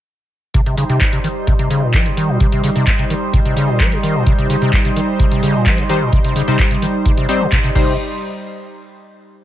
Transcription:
0.54 acid bass C3, analog synth pad G3 D#4 C5, kick, closed hi-hat
0.66 acid bass C3, closed hi-hat
0.77 acid bass C#3, open hi-hat
0.89 acid bass C3, closed hi-hat
1.01 kick, clap, closed hi-hat
1.13 acid bass C3, closed hi-hat
1.24 acid bass D#3, open hi-hat
1.47 acid bass C3, kick, closed hi-hat
1.59 acid bass C3, closed hi-hat
1.70 acid bass C#3, open hi-hat
1.82 acid bass A#2
1.94 acid bass F3, kick, clap, closed hi-hat
2.06 acid bass C3, closed hi-hat
2.17 acid bass D#3, open hi-hat
2.29 acid bass A#2
2.40 acid bass C3, kick, closed hi-hat
2.52 acid bass C3, closed hi-hat
2.64 acid bass C#3, open hi-hat
2.76 acid bass C3, closed hi-hat
2.87 kick, clap, closed hi-hat
2.99 acid bass C3, closed hi-hat
3.10 acid bass D#3, open hi-hat
3.33 acid bass C3, kick, closed hi-hat
3.45 acid bass C3, closed hi-hat
3.56 acid bass C#3, open hi-hat
3.69 acid bass A#2
3.80 acid bass F3, kick, clap, closed hi-hat
3.92 acid bass C3, closed hi-hat
4.03 acid bass D#3, open hi-hat
4.15 acid bass A#2
4.26 acid bass C3, kick, closed hi-hat
4.38 acid bass C3, closed hi-hat
4.50 acid bass C#3, open hi-hat
4.62 acid bass C3, closed hi-hat
4.73 kick, clap, closed hi-hat
4.85 acid bass C3, closed hi-hat
4.96 acid bass D#3, open hi-hat
5.20 acid bass C3, kick, closed hi-hat
5.32 acid bass C3, closed hi-hat
5.43 acid bass C#3, open hi-hat
5.55 acid bass A#2
5.66 acid bass F3, kick, clap, closed hi-hat
5.78 acid bass C3, closed hi-hat
5.89 acid bass D#3, synth stab G3 D#4 C5, open hi-hat
6.01 acid bass A#2
6.12 acid bass C3, kick, closed hi-hat
6.24 acid bass C3, closed hi-hat
6.36 acid bass C#3, open hi-hat
6.48 acid bass C3, synth stab G3 D#4 C5, closed hi-hat
6.59 kick, clap, closed hi-hat
6.71 acid bass C3, closed hi-hat
6.82 acid bass D#3, open hi-hat
7.05 acid bass C3, kick, closed hi-hat
7.17 acid bass C3, closed hi-hat
7.29 synth stab G3 D#4 C5, acid bass C4, open hi-hat
7.41 acid bass C3
7.52 acid bass C3, kick, clap, closed hi-hat
7.64 acid bass C3, closed hi-hat
7.75 acid bass C3, analog synth pad G3 D#4 C5, synth stab G3 D#4 C5, kick, crash

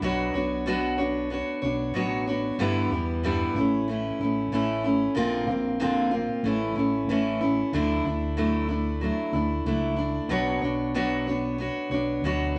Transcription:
0.01 fingered electric bass B1, steel-string acoustic guitar B2 F#3 B3 D4 F#4 C#5
0.33 fingered electric bass B1, steel-string acoustic guitar B3 D4 F#4 C#5
0.66 steel-string acoustic guitar B2 F#3 B3 D4 F#4 C#5
0.98 steel-string acoustic guitar B3 D4 F#4 C#5
1.30 steel-string acoustic guitar B3 D4 F#4 C#5
1.62 fingered electric bass B1, steel-string acoustic guitar B3 D4 F#4 C#5
1.94 fingered electric bass A1, steel-string acoustic guitar B2 F#3 B3 D4 F#4 C#5
2.27 steel-string acoustic guitar B3 D4 F#4 C#5
2.58 fingered electric bass G1, steel-string acoustic guitar G2 D3 E3 G3 B3 E4
2.90 fingered electric bass E2, steel-string acoustic guitar G3 B3 E4
2.95 steel-string acoustic guitar E3
3.23 steel-string acoustic guitar G2 D3 E3 G3 B3 E4
3.54 fingered electric bass A1, steel-string acoustic guitar C#4 E4
3.60 steel-string acoustic guitar A3
3.88 steel-string acoustic guitar E3 A3 C#4 E4
4.19 fingered electric bass A1, steel-string acoustic guitar C#4 E4
4.24 steel-string acoustic guitar A3
4.51 fingered electric bass A1, steel-string acoustic guitar A2 E3 A3 C#4 E4
4.84 steel-string acoustic guitar A3 C#4 E4
5.15 fingered electric bass A#1, steel-string acoustic guitar A#2 D3 A#3 C4 F4
5.47 fingered electric bass A#1, steel-string acoustic guitar C4 F4
5.51 steel-string acoustic guitar A#3
5.80 steel-string acoustic guitar A#2 D3 A#3 C4 F4
6.11 steel-string acoustic guitar A#3 C4 F4
6.43 fingered electric bass A1, steel-string acoustic guitar E3 A3 C#4
6.48 steel-string acoustic guitar E4
6.76 fingered electric bass A1, steel-string acoustic guitar A3 C#4 E4
7.07 fingered electric bass A1, steel-string acoustic guitar A2 E3 A3
7.11 steel-string acoustic guitar C#4 E4
7.41 steel-string acoustic guitar A3 C#4 E4
7.72 fingered electric bass D2, steel-string acoustic guitar D3 F#3 A3 D4 E4
8.04 fingered electric bass D2, steel-string acoustic guitar A3 D4 E4
8.37 steel-string acoustic guitar D3 F#3 A3 D4 E4
8.69 steel-string acoustic guitar A3 D4 E4
9.01 steel-string acoustic guitar F#3 A3 D4 E4
9.32 fingered electric bass D2, steel-string acoustic guitar A3 D4 E4
9.65 fingered electric bass C#2, steel-string acoustic guitar F#3 A3 D4 E4
9.96 steel-string acoustic guitar A3 D4 E4
10.28 fingered electric bass B1, steel-string acoustic guitar B2 F#3 B3 D4 F#4 C#5
10.61 fingered electric bass B1, steel-string acoustic guitar B3 D4 F#4 C#5
10.94 steel-string acoustic guitar B2 F#3 B3 D4 F#4 C#5
11.27 steel-string acoustic guitar B3 D4 F#4 C#5
11.58 steel-string acoustic guitar B3 D4 F#4 C#5
11.90 fingered electric bass B1, steel-string acoustic guitar F#4 C#5
11.94 steel-string acoustic guitar B3 D4
12.22 fingered electric bass D2, steel-string acoustic guitar B2 F#3 B3 D4
12.26 steel-string acoustic guitar F#4 C#5

